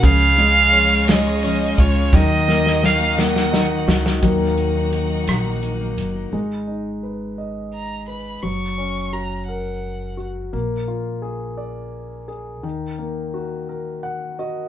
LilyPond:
<<
  \new Staff \with { instrumentName = "Violin" } { \time 6/8 \key dis \minor \tempo 4. = 57 eis''4. dis''4 cis''8 | dis''4 eis''8 fis''4 r8 | r2. | r2 ais''8 b''8 |
cis'''4 ais''8 fis''4 r8 | r2. | r2. | }
  \new Staff \with { instrumentName = "String section" } { \time 6/8 \key dis \minor <cis gis eis' cis''>2. | <dis ais fis' dis''>2. | <dis' fis' ais' fis''>2. | r2. |
r2. | r2. | r2. | }
  \new Staff \with { instrumentName = "Grand piano" } { \time 6/8 \key dis \minor << { r2. | r2. | r2. | r2. |
r2. | r2. | r2 fis''8 dis''8 | } \\ { cis8 gis8 cis'8 gis8 cis'8 eis'8 | dis8 ais8 dis'8 ais8 dis'8 fis'8 | <dis fis ais>2. | gis8 dis'8 b'8 dis''4 b'8 |
fis8 cis'8 fis'8 ais'4 fis'8 | ais8 eis'8 gis'8 d''4 gis'8 | dis8 ais8 fis'8 ais'4 fis'8 | } >> }
  \new Staff \with { instrumentName = "Steel-string acoustic guitar" } { \time 6/8 \key dis \minor eis8 gis8 eis8 gis8 eis8 cis'8 | fis8 ais8 fis8 ais8 fis8 dis'8 | fis16 ais16 dis'16 ais16 fis16 dis'16 fis16 ais16 dis'16 ais16 fis16 dis'16 | r2. |
r2. | r2. | r2. | }
  \new Staff \with { instrumentName = "Upright bass" } { \clef bass \time 6/8 \key dis \minor cis,2~ cis,8 cis,8 | dis,2~ dis,8 cis,8 | dis,4. ais,,4 fis,,8 | gis,,2. |
fis,,2. | ais,,2. | dis,2. | }
  \new DrumStaff \with { instrumentName = "Drums" } \drummode { \time 6/8 <bd cymr>8 cymr8 cymr8 <cymr sn>8 cymr8 <bd cymr>8 | <bd sn>8 sn16 sn16 sn8 sn16 sn16 sn8 sn16 sn16 | <hh bd>8 hh8 hh8 <hh ss>8 hh8 hh8 | r4. r4. |
r4. r4. | r4. r4. | r4. r4. | }
>>